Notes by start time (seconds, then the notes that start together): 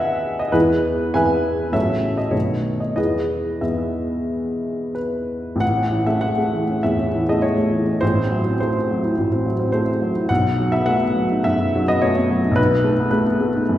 Already playing: D#2 F#3 A3 B3 B4 D#5 E5 F#5 G#5
0.39 D#5
0.52 E2 E3 G#3 B3 E4 G#4 B4
1.14 E2 E3 G#3 B3 B4 E5 G#5
1.72 A1 C#3 F#3 C#4 A4 C#5 E5
2.18 D#5
2.31 B1 D#3 A3 B3 C#5
2.80 D#5
2.96 E2 E3 G#3 B3 G#4 B4 D#5
3.61 E2 E3 G#3 B3 G#4 B4 E5
4.95 B4
5.56 A1
5.60 F#5
5.77 C#4
5.92 E3
6.07 A3 E5
6.21 G#3 F#5
6.38 A3
6.54 E3
6.70 C#4
6.83 E2 E5
7.00 C#4
7.15 E3
7.29 A3 D#5
7.42 G#3 C#5
7.58 A3
7.71 E3
7.87 C#4
8.01 A1 C5
8.16 E4
8.31 F#3
8.46 C4
8.60 A3 C5
8.76 C4
8.90 F#3
9.05 E4
9.18 A1
9.32 C4
9.46 F#3
9.59 C4
9.72 A3 C5
9.88 C4
10.02 F#3
10.16 E4
10.29 B1 F#5
10.45 D#4
10.60 F#3
10.72 B3 E5
10.86 A3 F#5
11.02 B3
11.16 F#3
11.31 D#4
11.44 F#2 E5
11.59 D#4
11.75 F#3
11.88 B3 D#5
12.02 A3 C#5
12.17 B3
12.30 F#3
12.45 D#4
12.51 B1
12.56 B4
12.70 D#4
12.84 A3
13.00 B3
13.11 A3 B4
13.26 B3
13.41 A3
13.54 D#4
13.69 F#2